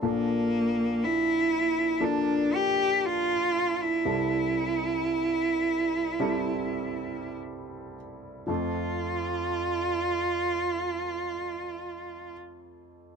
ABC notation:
X:1
M:4/4
L:1/16
Q:1/4=54
K:F
V:1 name="Cello"
B,4 E4 D2 G2 F3 E- | E12 z4 | F16 |]
V:2 name="Upright piano"
[F,B,DA]6 z2 [F,B,DA]6 z2 | [G,CEA]6 z2 [G,CEA]6 z2 | [F,A,CA]16 |]
V:3 name="Upright piano" clef=bass
[B,,,B,,]16 | [C,,C,]16 | F,,16 |]